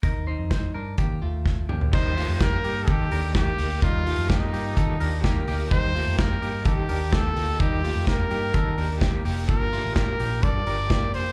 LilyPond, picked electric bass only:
\new Staff \with { instrumentName = "Picked electric bass" } { \clef bass \time 4/4 \key g \minor \tempo 4 = 127 ees,8. f,8. g,8 ees8 ees,4 d,8 | ees,8. f,8. g,8 ees8 ees,4 d,8 | ees,8. f,8. g,8 ees8 ees,4 d,8 | ees,8. f,8. g,8 ees8 ees,4 d,8 |
ees,8. f,8. g,8 ees8 ees,4 f,,8 | g,,8. a,,8. bes,,8 g,8 g,,4 f,,8 | }